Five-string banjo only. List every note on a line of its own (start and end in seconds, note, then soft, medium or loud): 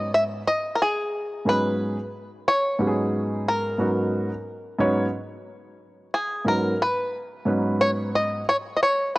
0.00 0.14 D#5 loud
0.14 0.23 E5 medium
0.47 0.75 D#5 medium
0.75 0.80 A#4 medium
0.82 1.49 G#4 medium
1.49 2.47 B4 medium
2.48 3.50 C#5 medium
3.48 6.10 A#4 medium
6.14 6.48 G#4 medium
6.48 6.81 A#4 medium
6.82 7.81 B4 medium
7.81 7.90 C#5 medium
8.15 8.48 D#5 medium
8.49 8.56 C#5 loud
8.76 8.81 D#5 medium
8.83 9.15 C#5 medium